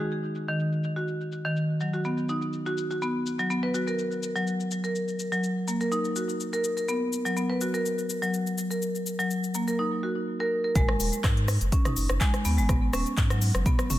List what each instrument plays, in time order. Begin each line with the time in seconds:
0.11 cabasa
0.24 cabasa
0.35 cabasa
0.48 marimba D#3, cabasa
0.59 cabasa
0.72 cabasa
0.84 cabasa
0.96 marimba F#4, cabasa
1.08 cabasa
1.21 cabasa
1.32 cabasa
1.45 marimba D#3, cabasa
1.56 cabasa
1.80 marimba F#3, cabasa
1.93 marimba F#4, cabasa
2.05 marimba B3, cabasa
2.18 cabasa
2.29 marimba D#4, cabasa
2.42 cabasa
2.53 cabasa
2.66 marimba F#4, cabasa
2.78 cabasa
2.91 marimba F#4, cabasa
3.02 marimba B3, cabasa
3.26 cabasa
3.39 marimba F#3, cabasa
3.50 marimba B3, cabasa
3.63 marimba B4
3.74 marimba F#4, cabasa
3.87 marimba A#4, cabasa
3.99 cabasa
4.12 cabasa
4.23 cabasa
4.35 marimba F#3, cabasa
4.47 cabasa
4.60 cabasa
4.71 cabasa
4.84 marimba A#4, cabasa
4.95 cabasa
5.08 cabasa
5.19 cabasa
5.32 marimba F#3, cabasa
5.44 cabasa
5.68 marimba A#3, cabasa
5.81 marimba A#4, cabasa
5.92 marimba D#4, cabasa
6.05 cabasa
6.16 marimba F#4, cabasa
6.29 cabasa
6.40 cabasa
6.53 marimba A#4, cabasa
6.64 cabasa
6.77 marimba A#4, cabasa
6.88 marimba B3, cabasa
7.13 cabasa
7.25 marimba F#3, cabasa
7.37 marimba B3, cabasa
7.50 marimba B4
7.61 marimba F#4, cabasa
7.74 marimba A#4, cabasa
7.86 cabasa
7.98 cabasa
8.10 cabasa
8.22 marimba F#3, cabasa
8.34 cabasa
8.47 cabasa
8.58 cabasa
8.71 marimba A#4, cabasa
8.82 cabasa
8.95 cabasa
9.07 cabasa
9.19 marimba F#3, cabasa
9.31 cabasa
9.44 cabasa
9.55 marimba A#3, cabasa
9.68 marimba A#4, cabasa
9.79 marimba D#4
10.03 marimba F#4
10.40 marimba A#4
10.64 marimba A#4
10.75 sub bass G#1, marimba G#3, kick, closed hi-hat, mid tom, cabasa
10.89 cross-stick
11.00 sub bass D#1, open hi-hat, cabasa
11.13 closed hi-hat, cabasa
11.24 sub bass G#2, kick, cross-stick, clap, closed hi-hat, cabasa
11.37 closed hi-hat
11.48 cross-stick, open hi-hat, cabasa
11.61 sub bass F#1, closed hi-hat, cabasa
11.72 marimba C#4, kick, closed hi-hat, cabasa
11.85 marimba D#4, cross-stick, closed hi-hat, mid tom, cabasa
11.96 sub bass F#1, open hi-hat, cabasa
12.09 sub bass F#1, cross-stick, closed hi-hat, cabasa
12.21 marimba G#3, kick, clap, closed hi-hat, cabasa
12.34 cross-stick, closed hi-hat, cabasa
12.45 sub bass D#2, marimba B3, open hi-hat, cabasa
12.58 sub bass G#1, marimba G#3, cabasa
12.69 sub bass G#1, marimba B3, kick, cross-stick, closed hi-hat, mid tom, cabasa
12.93 sub bass D#1, marimba C#4, cross-stick, open hi-hat, cabasa
13.06 closed hi-hat, cabasa
13.17 sub bass G#2, kick, clap, closed hi-hat, cabasa
13.30 marimba F#3, cross-stick, closed hi-hat, cabasa
13.42 open hi-hat, cabasa
13.55 sub bass F#1, cross-stick, closed hi-hat, cabasa
13.66 marimba B3, kick, closed hi-hat, mid tom, cabasa
13.79 cross-stick, closed hi-hat, cabasa
13.90 sub bass F#1, marimba C#4, mid tom, open hi-hat, cabasa